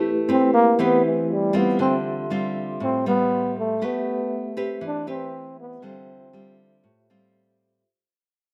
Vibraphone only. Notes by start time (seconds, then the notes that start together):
Already playing: A3 E4 G4 B4
1.77 F4 G4 A4
1.81 E5 C6
3.79 A3 G4 B4
3.85 E5
5.80 F4 G4 A4
5.85 C5 E5